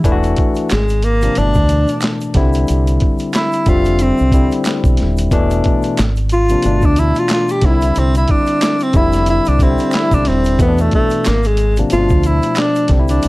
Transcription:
0.04 E1 E3 A3 D4 E4, kick, closed hi-hat, shaker
0.12 F#4
0.23 closed hi-hat, shaker
0.36 kick, closed hi-hat
0.55 closed hi-hat, shaker
0.70 G#1 G#3, finger snap, snare, clap, closed hi-hat, shaker
0.89 closed hi-hat, shaker
1.02 A#3, closed hi-hat, shaker
1.22 C3 F3 A#3 D4, closed hi-hat, shaker
1.35 G1 A2 E3 A3 D4, closed hi-hat, shaker
1.43 B2
1.54 D2, kick, shaker
1.69 closed hi-hat, shaker
1.88 closed hi-hat, shaker
2.01 finger snap, snare, clap, closed hi-hat, shaker
2.21 closed hi-hat, shaker
2.34 C2 D3 G3 C4 E4, kick, snare, closed hi-hat
2.53 closed hi-hat, shaker
2.68 C2, closed hi-hat, shaker
2.87 closed hi-hat, shaker
3.00 kick, closed hi-hat
3.18 closed hi-hat, shaker
3.33 E4, finger snap, snare, clap, closed hi-hat, shaker
3.52 closed hi-hat, shaker
3.66 F1 D3 G3 C4 F4 E5, kick, closed hi-hat, shaker
3.85 closed hi-hat, shaker
3.99 C4, closed hi-hat, shaker
4.18 C2, shaker
4.32 D3 G3 C4 E4, kick, closed hi-hat, shaker
4.51 closed hi-hat, shaker
4.64 finger snap, snare, clap, closed hi-hat, shaker
4.84 B1, kick, closed hi-hat, shaker
4.97 snare, closed hi-hat
5.02 D#1
5.17 closed hi-hat, shaker
5.31 E1 B2 E3 A3 D4, kick, closed hi-hat, shaker
5.50 closed hi-hat, shaker
5.64 kick, closed hi-hat
5.82 closed hi-hat, shaker
5.97 G#1, finger snap, snare, clap, closed hi-hat, shaker
6.16 closed hi-hat, shaker
6.29 F4, closed hi-hat, shaker
6.49 C3 F3 A#3 D4, closed hi-hat, shaker
6.62 G1 B2 E3 A3 D4, closed hi-hat, shaker
6.82 D2 D4, kick, shaker
6.96 E4, closed hi-hat, shaker
7.15 F4, closed hi-hat, shaker
7.28 finger snap, snare, clap, closed hi-hat, shaker
7.33 F4
7.48 G4, closed hi-hat, shaker
7.61 C2 D3 G3 C4 D#4 E4, kick, snare, closed hi-hat
7.71 E4
7.81 closed hi-hat, shaker
7.95 C2 C4, closed hi-hat, shaker
8.14 E4, closed hi-hat, shaker
8.28 D4, kick, closed hi-hat
8.46 closed hi-hat, shaker
8.61 finger snap, snare, clap, closed hi-hat, shaker
8.79 C4, closed hi-hat, shaker
8.93 F1 D3 G3 C4 E4, kick, closed hi-hat, shaker
9.12 snare, closed hi-hat, shaker
9.26 E4, closed hi-hat, shaker
9.45 C2 D4, closed hi-hat, shaker
9.59 D3 G3 C4 E4, kick, closed hi-hat, shaker
9.78 closed hi-hat, shaker
9.91 E4, finger snap, clap, closed hi-hat, shaker
9.95 snare
10.11 B1 D4, kick, closed hi-hat, shaker
10.25 D#1 C4, snare, closed hi-hat
10.44 closed hi-hat, shaker
10.59 E2 B2 E3 A3 B3 C4, kick, closed hi-hat, shaker
10.68 D4
10.78 A3, closed hi-hat, shaker
10.91 A3, kick, closed hi-hat
11.10 closed hi-hat, shaker
11.25 G#1 A#3, finger snap, snare, clap, closed hi-hat, shaker
11.43 G#3, closed hi-hat, shaker
11.57 closed hi-hat, shaker
11.76 C3 F3 A#3 D4, closed hi-hat, shaker
11.90 G1 B2 F3 A3 C4 F4, closed hi-hat, shaker
12.00 D4
12.09 D2, kick, shaker
12.23 E4, closed hi-hat, shaker
12.42 closed hi-hat, shaker
12.55 D4, finger snap, snare, clap, closed hi-hat, shaker
12.75 closed hi-hat, shaker
12.88 C2 D3 G3 C4, kick, snare, closed hi-hat
12.93 D4
12.99 E4
13.08 D4, closed hi-hat, shaker
13.22 C2, closed hi-hat, shaker

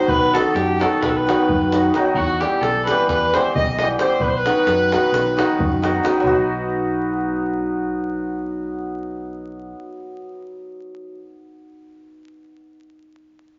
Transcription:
Already playing: D#3 F#3 C5
0.07 B1 B4, davul low
0.32 D#3 F#3 B3 D#4 F#4 A4, davul high
0.55 F#2 G4, davul high
0.79 D#3 F#3 B3 D#4 F#4 A4, davul high
0.93 davul high
1.01 B1 B4, davul high, davul low
1.09 A4
1.16 B4
1.27 D#3 F#3 B3 D#4 F#4, davul high
1.49 F#2, davul low
1.61 davul high
1.72 D#3 F#3 B3 D#4 F#4, davul high
1.94 D#3 F#3 B3 D#4 F#4, davul high
2.14 E2 F#4, davul low
2.40 E3 G3 B3 E4 G4, davul high
2.61 B1 A4, davul high
2.85 E3 G3 B4, davul high
2.89 B3 E4 G4
2.99 davul high
3.08 E2 B4, davul high, davul low
3.34 E3 G3 B3 E4 G4 C5, davul high
3.55 B1 D#5, davul low
3.68 davul high
3.79 E3 G3 B3 E4 D#5, davul high
3.83 G4
3.99 E3 G3 B3 E4 G4 C5, davul high
4.20 B1 B4, davul low
4.28 C5
4.37 B4
4.46 D#3 F#3 B3 D#4 F#4, davul high
4.56 davul high
4.67 F#2, davul high
4.92 D#3 F#3 B3 D#4 F#4, davul high
5.04 davul high
5.12 B1, davul high
5.28 davul high
5.37 D#3 F#3 B3 D#4 F#4, davul high
5.50 davul high
5.59 F#2, davul low
5.72 davul high
5.82 D#3 F#3 B3 D#4 F#4, davul high
5.95 davul high
6.03 D#3 F#3 B3 D#4 F#4, davul high
6.20 B1 F#3 B3
6.24 D#4 F#4, davul low

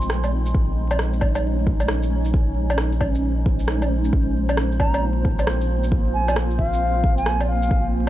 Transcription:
Already playing: A#1 G#3 C4 D#4 C5
0.01 shaker
0.10 cross-stick
0.24 low woodblock, shaker
0.46 shaker
0.54 A#1 C#4 C#5, kick
0.91 low woodblock, shaker
0.99 cross-stick
1.13 shaker
1.21 kick, low woodblock
1.35 low woodblock, shaker
1.67 kick
1.80 low woodblock, shaker
1.88 cross-stick
2.03 shaker
2.25 shaker
2.34 C5, kick
2.70 low woodblock, shaker
2.78 cross-stick
2.92 shaker
3.01 kick, low woodblock
3.15 shaker
3.46 kick
3.59 shaker
3.68 cross-stick
3.82 low woodblock, shaker
4.05 shaker
4.13 A#1 A#3 C4 F4, kick
4.49 low woodblock, shaker
4.57 cross-stick
4.72 shaker
4.80 A#5, kick, low woodblock
4.94 low woodblock, shaker
5.25 kick
5.39 low woodblock, shaker
5.47 cross-stick
5.61 shaker
5.84 shaker
5.92 kick
6.14 G#5
6.28 low woodblock, shaker
6.36 cross-stick
6.51 shaker
6.58 F5, kick
6.73 shaker
7.04 kick
7.17 G#5, shaker
7.26 cross-stick
7.40 low woodblock, shaker
7.48 F5
7.63 shaker
7.71 A#4, kick

